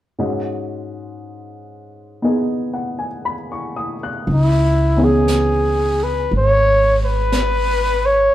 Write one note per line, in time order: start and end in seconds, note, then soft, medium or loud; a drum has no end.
0.18 4.26 G#2 soft
0.18 4.26 G#3 soft
0.18 4.26 C#4 soft
0.18 4.26 F#4 soft
0.18 2.23 D#5 soft
2.22 4.26 B3 soft
2.22 4.26 D#4 soft
2.22 4.27 G#4 soft
2.22 4.27 D#5 soft
2.74 3.05 F#5 soft
2.99 3.34 G#5 soft
3.25 3.73 B5 soft
3.52 3.95 C#6 soft
3.76 4.07 D#6 soft
4.03 4.38 F#6 soft
4.26 6.26 C#2 medium
4.26 brush sweep soft
4.34 5.06 E4 medium
4.97 8.34 E3 soft
4.97 8.34 B3 soft
4.97 8.34 C#4 soft
4.97 8.34 D#4 soft
4.97 8.35 G#4 soft
5.05 6.05 G#4 medium
5.28 brush sweep soft
5.28 snare soft
5.28 hi-hat pedal medium
6.04 6.33 B4 medium
6.30 8.30 G#1 medium
6.30 brush sweep soft
6.38 6.99 C#5 medium
7.05 8.07 B4 medium
7.32 brush sweep soft
7.32 snare soft
7.32 hi-hat pedal soft
8.06 8.35 C#5 medium